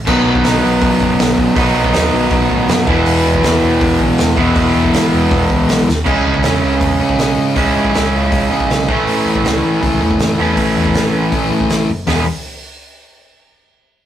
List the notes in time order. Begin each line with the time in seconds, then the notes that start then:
0.07 B1 B2 D#3 F#3 B3 D#4, kick, crash
0.11 B3
0.26 B1
0.35 kick
0.44 B1, snare, open hi-hat
0.61 B1 B2 D#3 F#3 B3 D#4
0.81 B1, kick, open hi-hat
1.00 F#1, kick
1.19 B1, snare, open hi-hat
1.38 B1, kick
1.55 B1 B2 D#3 F#3 B3 D#4, kick, open hi-hat
1.59 B3
1.75 B1
1.84 kick
1.93 D#2, snare, open hi-hat
2.11 B1 B2 D#3 F#3 B3 D#4
2.31 B1, kick, open hi-hat
2.50 A2, kick
2.68 F#2, snare, open hi-hat
2.87 E1 E2 B2 E3 G#3 B3 E4, kick
2.91 E3
3.06 E1, open hi-hat
3.26 E1
3.34 kick
3.42 E1 E3 G#3 B3 E4, snare, open hi-hat
3.63 E1
3.81 E1, kick, open hi-hat
4.00 B1, kick
4.18 E1, snare, open hi-hat
4.37 E1 E2 B2 E3 G#3 B3 E4, kick
4.41 E3
4.55 E1, kick, open hi-hat
4.76 E1
4.84 kick
4.92 G#1 E3 G#3 B3, snare, open hi-hat
4.96 E4
5.13 E1
5.31 E1, kick, open hi-hat
5.50 C#2, kick
5.69 B1, snare, open hi-hat
5.87 D#2, snare
6.05 C#2 C#3 G#3 C#4 E4, kick, crash
6.09 C#4
6.25 C#2
6.34 kick
6.43 E2, snare, open hi-hat
6.63 C#2
6.81 E2, kick, open hi-hat
7.00 G#2 G#3 C#4
7.04 C#3
7.09 kick
7.18 B1 C#3 G#3 C#4, snare, open hi-hat
7.38 G#2
7.55 C#2 C#3 G#3 C#4 E4, kick, open hi-hat
7.76 G#2
7.85 kick
7.94 C#2, snare, open hi-hat
8.13 C#2
8.32 C#2, kick, open hi-hat
8.50 C#3 G#3 C#4
8.60 kick
8.70 B1 C#3 G#3 C#4, snare, open hi-hat
8.88 A1 A2 E3 A3 C#4, kick
8.92 E4
9.07 A1, open hi-hat
9.26 A1
9.36 kick
9.45 C#2, snare, open hi-hat
9.64 A1
9.82 C#2 A2 E3, kick, open hi-hat
9.86 A3
10.00 E2 A2 E3 A3
10.11 kick
10.19 F#1, snare, open hi-hat
10.38 E2 A2 E3 A3 C#4 E4
10.57 A1, kick, open hi-hat
10.77 E2
10.85 kick
10.94 A1, snare, open hi-hat
11.14 A1
11.32 A1 A2 E3 A3, kick, open hi-hat
11.51 A2 E3 A3
11.60 kick
11.70 A1, snare, open hi-hat
11.89 F#1
12.07 E1 E2 B2 E3 G#3 B3 E4 G#4, snare, floor tom, open hi-hat